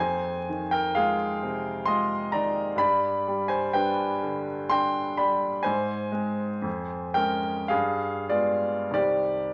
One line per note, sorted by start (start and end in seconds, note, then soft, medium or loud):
0.00 2.73 F2 medium
0.00 0.68 C5 medium
0.00 0.72 G#5 medium
0.49 1.23 D#3 soft
0.71 0.94 A#4 medium
0.71 0.95 G5 medium
0.95 1.38 G#3 soft
0.95 1.38 F4 soft
0.95 1.83 G#4 medium
0.95 1.86 F5 medium
1.42 2.15 C3 soft
1.85 2.30 G#3 soft
1.85 2.30 F4 soft
1.85 2.30 D#5 medium
1.85 2.32 C6 loud
2.32 2.80 D#3 soft
2.32 2.76 D5 medium
2.32 2.79 A#5 medium
2.76 5.61 G2 medium
2.76 3.46 D5 medium
2.76 3.49 B5 medium
3.28 3.74 G3 soft
3.48 3.72 C5 medium
3.48 3.73 G#5 medium
3.73 4.20 G3 soft
3.73 4.20 D4 soft
3.73 4.68 B4 medium
3.73 4.70 G5 medium
4.23 5.01 D3 soft
4.70 5.15 G3 soft
4.70 5.15 D4 soft
4.70 5.16 G5 medium
4.70 5.18 C6 loud
5.17 5.66 G3 soft
5.17 5.63 D5 medium
5.17 5.66 B5 medium
5.63 6.61 G#2 medium
5.63 7.12 C5 medium
5.63 7.15 G#5 medium
6.12 6.59 G#3 soft
6.12 6.59 C4 soft
6.62 7.69 F2 medium
7.14 7.69 G#3 soft
7.14 7.69 C#4 soft
7.14 7.68 A#4 medium
7.14 7.72 G5 medium
7.68 8.91 G2 medium
7.68 8.27 G#4 medium
7.68 8.30 F5 medium
8.30 8.91 G#3 soft
8.30 8.92 B3 soft
8.30 8.91 F4 medium
8.30 8.92 D5 medium
8.91 9.54 C2 medium
8.91 9.54 D#3 soft
8.91 9.54 G3 soft
8.91 9.54 D5 medium
8.95 9.54 C4 soft
8.95 9.54 G4 medium